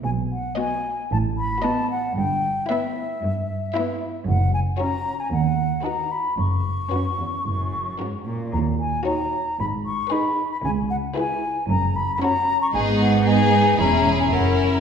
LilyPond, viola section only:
\new Staff \with { instrumentName = "Viola section" } { \time 4/4 \key b \major \tempo 4 = 114 r4 b4 r4 b4 | r4 b4 r4 b4 | r4 cis'4 r4 dis'4 | r4 cis'4 r4 cis'4 |
r4 dis'4 r4 dis'4 | r4 e'4 r4 cis'4 | b4 b4 cis'4 cis'4 | }